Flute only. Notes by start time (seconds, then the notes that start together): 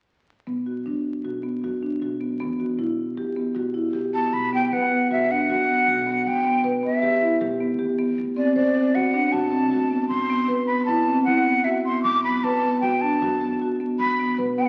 4.14 A5
4.33 B5
4.54 G5
4.65 G5
4.73 F#5
5.11 E5
5.31 F#5
6.28 G5
6.85 E5
8.37 D5
8.56 D5
8.95 F#5
9.32 A5
10.09 C6
10.67 B5
10.85 A5
11.25 F#5
11.64 E5
11.85 C6
12.03 D6
12.24 B5
12.44 A5
12.81 G5
13.01 A5
13.99 B5
14.58 G5
14.66 F#5